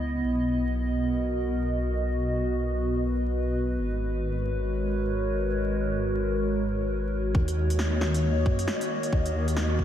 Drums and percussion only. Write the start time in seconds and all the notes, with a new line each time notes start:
7.35 kick
7.48 closed hi-hat
7.70 closed hi-hat
7.79 snare
8.01 snare
8.14 closed hi-hat
8.46 kick
8.59 closed hi-hat
8.68 snare
8.81 closed hi-hat
9.03 closed hi-hat
9.13 kick
9.26 closed hi-hat
9.48 closed hi-hat
9.57 snare
9.79 kick